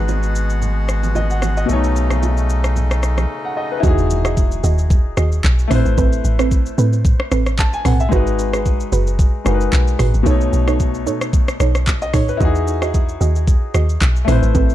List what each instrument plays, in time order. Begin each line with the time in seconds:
Already playing: sub bass G#1, accordion B2 G#3 F#4, grand piano G#3 D#4 F#4 B4
0.08 high bongo, shaker
0.23 shaker
0.35 shaker
0.50 shaker
0.62 low conga, shaker
0.89 cross-stick, shaker
1.03 low bongo, shaker
1.15 grand piano D#5, high bongo, low conga, shaker
1.30 grand piano F#5, shaker
1.42 cross-stick, high bongo, low bongo, shaker
1.57 grand piano D#5, shaker
1.66 sub bass B1, grand piano B2 A3, accordion C#3 A3 D#4, low conga, shaker
1.71 grand piano D#4 C#5
1.84 shaker
1.96 shaker
2.10 cross-stick, low bongo, shaker
2.23 high bongo, shaker
2.37 shaker
2.50 shaker
2.64 cross-stick, shaker
2.76 low conga, shaker
2.91 cross-stick, shaker
3.03 cross-stick, shaker
3.18 cross-stick, low bongo, shaker
3.45 grand piano F#5
3.57 grand piano D#5
3.72 grand piano B4
3.80 log drum bass E2, grand piano D#4 E4, synth pluck F#4 G#4 D#5, kick, impact, shaker
3.85 grand piano F#4 G#4
3.98 shaker
4.10 shaker
4.25 synth pluck F#4 G#4 D#5, cross-stick, shaker
4.37 kick, shaker
4.52 shaker
4.64 log drum bass D#2, synth pluck F#4 G#4 D#5, shaker
4.78 shaker
4.90 kick, shaker
5.17 log drum bass D#2, synth pluck F#4 G#4 D#5, cross-stick, shaker
5.32 shaker
5.44 log drum bass B1, kick, clap, shaker
5.59 shaker
5.68 log drum bass A1, grand piano A3 E4, synth pluck C4 A4 B4, cross-stick, mid tom, open hi-hat, shaker
5.73 grand piano B4 C5
5.86 log drum bass A1, shaker
5.97 log drum bass A1, synth pluck C4 A4 B4, kick, shaker
6.13 shaker
6.25 log drum bass A1, shaker
6.39 synth pluck C4 A4 B4, cross-stick, shaker
6.51 kick, shaker
6.66 shaker
6.78 log drum bass A2, synth pluck C4 A4 B4, shaker
6.93 shaker
7.05 kick, shaker
7.20 cross-stick
7.31 log drum bass A1, synth pluck C4 A4 B4, cross-stick, shaker
7.46 cross-stick, shaker
7.58 grand piano A5, kick, clap, shaker
7.73 grand piano G#5, shaker
7.85 log drum bass B1, synth pluck C4 A4 B4, grand piano F#5, cross-stick, mid tom, open hi-hat, shaker
8.00 grand piano E5, shaker
8.09 log drum bass G#1, grand piano G#3 D#4, synth pluck F#4 G#4 B4, kick, shaker
8.14 grand piano F#4 B4
8.27 shaker
8.39 shaker
8.53 synth pluck F#4 G#4 B4, cross-stick, shaker
8.66 kick, shaker
8.80 shaker
8.92 log drum bass F#1, synth pluck F#4 G#4 B4, shaker
9.07 shaker
9.19 kick, shaker
9.44 log drum bass F#1, grand piano G#3 D#4 F#4 A#4, synth pluck F#4 G#4 B4, cross-stick, shaker
9.55 grand piano B4
9.61 shaker
9.73 log drum bass B1, kick, clap, shaker
9.88 shaker
9.99 log drum bass G#1, synth pluck F#4 G#4 B4, cross-stick, mid tom, open hi-hat, shaker
10.14 log drum bass G#1, shaker
10.23 log drum bass B1, grand piano B2 A3, synth pluck D#4 A4 C#5, kick, shaker
10.28 grand piano D#4 C#5
10.41 shaker
10.53 log drum bass B1, shaker
10.67 synth pluck D#4 A4 C#5, cross-stick, shaker
10.80 kick, shaker
10.94 shaker
11.06 log drum bass B2, synth pluck D#4 A4 C#5, shaker
11.21 cross-stick, shaker
11.33 kick, shaker
11.48 cross-stick, shaker
11.60 log drum bass B1, synth pluck D#4 A4 C#5, cross-stick, shaker
11.75 cross-stick, shaker
11.87 kick, clap, shaker
12.02 grand piano D#5, shaker
12.13 log drum bass C#2, synth pluck D#4 A4 C#5, grand piano C#5, kick, cross-stick, mid tom, open hi-hat, shaker
12.29 grand piano B4, shaker
12.37 log drum bass E2, grand piano D#4 E4, synth pluck F#4 G#4 D#5, kick, shaker
12.42 grand piano F#4 G#4
12.55 shaker
12.68 shaker
12.82 synth pluck F#4 G#4 D#5, cross-stick, shaker
12.94 kick, shaker
13.09 shaker
13.21 log drum bass D#2, synth pluck F#4 G#4 D#5, shaker
13.36 shaker
13.48 kick, shaker
13.74 log drum bass D#2, synth pluck F#4 G#4 D#5, cross-stick, shaker
13.89 shaker
14.01 log drum bass B1, kick, clap, shaker
14.16 shaker
14.25 log drum bass A1, grand piano A3 E4, synth pluck C4 A4 B4, cross-stick, mid tom, open hi-hat, shaker
14.30 grand piano B4 C5
14.43 log drum bass A1, shaker
14.55 log drum bass A1, synth pluck C4 A4 B4, kick, shaker
14.70 shaker